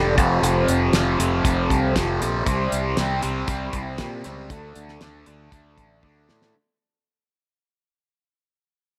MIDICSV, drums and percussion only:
0, 0, Header, 1, 2, 480
1, 0, Start_track
1, 0, Tempo, 509771
1, 402, Time_signature, 4, 2, 24, 8
1, 8457, End_track
2, 0, Start_track
2, 0, Title_t, "Drums"
2, 167, Note_on_c, 9, 36, 98
2, 170, Note_on_c, 9, 42, 58
2, 262, Note_off_c, 9, 36, 0
2, 264, Note_off_c, 9, 42, 0
2, 409, Note_on_c, 9, 42, 81
2, 503, Note_off_c, 9, 42, 0
2, 643, Note_on_c, 9, 42, 55
2, 738, Note_off_c, 9, 42, 0
2, 878, Note_on_c, 9, 42, 70
2, 880, Note_on_c, 9, 38, 95
2, 972, Note_off_c, 9, 42, 0
2, 974, Note_off_c, 9, 38, 0
2, 1129, Note_on_c, 9, 42, 56
2, 1223, Note_off_c, 9, 42, 0
2, 1363, Note_on_c, 9, 36, 99
2, 1366, Note_on_c, 9, 42, 71
2, 1457, Note_off_c, 9, 36, 0
2, 1460, Note_off_c, 9, 42, 0
2, 1604, Note_on_c, 9, 36, 74
2, 1612, Note_on_c, 9, 42, 52
2, 1698, Note_off_c, 9, 36, 0
2, 1706, Note_off_c, 9, 42, 0
2, 1843, Note_on_c, 9, 36, 70
2, 1845, Note_on_c, 9, 42, 80
2, 1847, Note_on_c, 9, 38, 103
2, 1937, Note_off_c, 9, 36, 0
2, 1939, Note_off_c, 9, 42, 0
2, 1941, Note_off_c, 9, 38, 0
2, 2088, Note_on_c, 9, 42, 56
2, 2182, Note_off_c, 9, 42, 0
2, 2321, Note_on_c, 9, 36, 101
2, 2321, Note_on_c, 9, 42, 74
2, 2415, Note_off_c, 9, 36, 0
2, 2415, Note_off_c, 9, 42, 0
2, 2563, Note_on_c, 9, 42, 58
2, 2657, Note_off_c, 9, 42, 0
2, 2796, Note_on_c, 9, 42, 70
2, 2798, Note_on_c, 9, 38, 92
2, 2890, Note_off_c, 9, 42, 0
2, 2892, Note_off_c, 9, 38, 0
2, 3037, Note_on_c, 9, 42, 59
2, 3131, Note_off_c, 9, 42, 0
2, 3274, Note_on_c, 9, 42, 76
2, 3276, Note_on_c, 9, 36, 99
2, 3368, Note_off_c, 9, 42, 0
2, 3370, Note_off_c, 9, 36, 0
2, 3512, Note_on_c, 9, 42, 61
2, 3514, Note_on_c, 9, 36, 69
2, 3606, Note_off_c, 9, 42, 0
2, 3608, Note_off_c, 9, 36, 0
2, 3749, Note_on_c, 9, 42, 79
2, 3751, Note_on_c, 9, 38, 103
2, 3755, Note_on_c, 9, 36, 69
2, 3843, Note_off_c, 9, 42, 0
2, 3845, Note_off_c, 9, 38, 0
2, 3849, Note_off_c, 9, 36, 0
2, 3994, Note_on_c, 9, 42, 60
2, 3995, Note_on_c, 9, 38, 28
2, 4088, Note_off_c, 9, 42, 0
2, 4090, Note_off_c, 9, 38, 0
2, 4237, Note_on_c, 9, 36, 97
2, 4238, Note_on_c, 9, 42, 76
2, 4331, Note_off_c, 9, 36, 0
2, 4332, Note_off_c, 9, 42, 0
2, 4477, Note_on_c, 9, 42, 54
2, 4572, Note_off_c, 9, 42, 0
2, 4600, Note_on_c, 9, 38, 29
2, 4694, Note_off_c, 9, 38, 0
2, 4715, Note_on_c, 9, 42, 67
2, 4717, Note_on_c, 9, 38, 90
2, 4809, Note_off_c, 9, 42, 0
2, 4811, Note_off_c, 9, 38, 0
2, 4955, Note_on_c, 9, 42, 54
2, 5049, Note_off_c, 9, 42, 0
2, 5198, Note_on_c, 9, 36, 95
2, 5199, Note_on_c, 9, 42, 72
2, 5293, Note_off_c, 9, 36, 0
2, 5293, Note_off_c, 9, 42, 0
2, 5438, Note_on_c, 9, 36, 70
2, 5440, Note_on_c, 9, 42, 51
2, 5532, Note_off_c, 9, 36, 0
2, 5534, Note_off_c, 9, 42, 0
2, 5677, Note_on_c, 9, 36, 72
2, 5772, Note_off_c, 9, 36, 0
2, 5920, Note_on_c, 9, 38, 68
2, 6014, Note_off_c, 9, 38, 0
2, 6044, Note_on_c, 9, 38, 74
2, 6138, Note_off_c, 9, 38, 0
2, 8457, End_track
0, 0, End_of_file